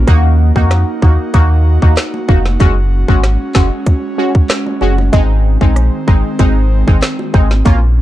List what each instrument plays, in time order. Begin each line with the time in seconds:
Already playing: analog synth pad A#3
0.07 sub bass D#2, synth stab A#3 D#4 F#4, analog synth pad D#4 F#4, kick, closed hi-hat, high bongo
0.56 sub bass F2, synth stab A#3 D#4 F#4, kick
0.71 cross-stick, snare, closed hi-hat
1.02 sub bass D#2, synth stab A#3 D#4 F#4, kick
1.34 sub bass D#2, synth stab A#3 D#4 F#4, kick, closed hi-hat, high bongo
1.82 sub bass D#2, synth stab A#3 D#4 F#4, kick
1.97 cross-stick, snare, clap, closed hi-hat
2.14 high bongo
2.28 sub bass F1, synth stab A#3 D#4 F#4, kick, low bongo
2.46 snare, high bongo
2.60 sub bass F#1, synth stab G#3 C#4 F#4, analog synth pad G#3 C#4, kick, closed hi-hat, high bongo
3.08 sub bass G#1, synth stab G#3 C#4 F#4, kick
3.23 cross-stick, snare, closed hi-hat
3.55 sub bass F#1, synth stab G#3 C#4 F#4, kick, snare, clap
3.86 kick, closed hi-hat, high bongo
4.18 synth stab G#3 C#4 F#4
4.35 kick
4.50 cross-stick, snare, clap, closed hi-hat
4.66 high bongo
4.81 sub bass F#1, synth stab G#3 C#4 F#4, low bongo
4.98 high bongo
5.12 sub bass G#1, analog synth pad D#3 C4, synth stab G#3 C4 D#4, kick, closed hi-hat, high bongo
5.61 sub bass A#1, synth stab G#3 C4 D#4, kick
5.76 cross-stick, closed hi-hat
6.07 sub bass G#1, synth stab G#3 C4 D#4, kick
6.39 sub bass G#1, synth stab G#3 C4 D#4, kick, closed hi-hat, high bongo
6.87 sub bass G#1, synth stab G#3 C4 D#4, kick
7.02 cross-stick, snare, clap, closed hi-hat
7.19 high bongo
7.34 sub bass G#1, synth stab G#3 C4 D#4, kick, low bongo
7.51 snare, high bongo
7.65 sub bass A#1, analog synth pad F3 A#3 C#4, synth stab A#3 C#4 F4, kick, closed hi-hat, high bongo